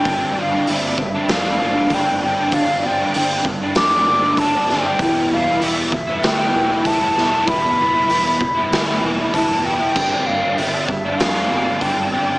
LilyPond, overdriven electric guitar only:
\new Staff \with { instrumentName = "Overdriven electric guitar" } { \time 4/4 \key g \mixolydian \tempo 4 = 97 <g, d g c' d'>8 <d g c' d'>16 <g c' d'>16 <g, d g c' d'>8. <g c' d'>8 <g c' d'>16 <d g c' d'>8 <g, d g c' d'>16 <g c' d'>16 <d g c' d'>16 <g c' d'>16 | <g, d g c' d'>8 <d g c' d'>16 <g c' d'>16 <g, d g c' d'>8. <g c' d'>8 <g c' d'>16 <d g c' d'>8 <g, d g c' d'>16 <g c' d'>16 <d g c' d'>16 <g c' d'>16 | <e g b e'>8 <e g b e'>16 <g b e'>16 <e g b e'>8. <g b e'>8 <g b e'>16 <e g b e'>8 <e g b e'>16 <g b e'>16 <e g b e'>16 <g b e'>16 | <e g b e'>8 <e g b e'>16 <g b e'>16 <e g b e'>8. <g b e'>8 <g b e'>16 <e g b e'>8 <e g b e'>16 <g b e'>16 <e g b e'>16 <g b e'>16 |
<g, d g c' d'>8 <d g c' d'>16 <g c' d'>16 <g, d g c' d'>8. <g c' d'>8 <g c' d'>16 <d g c' d'>8 <g, d g c' d'>16 <g c' d'>16 <d g c' d'>16 <g c' d'>16 | }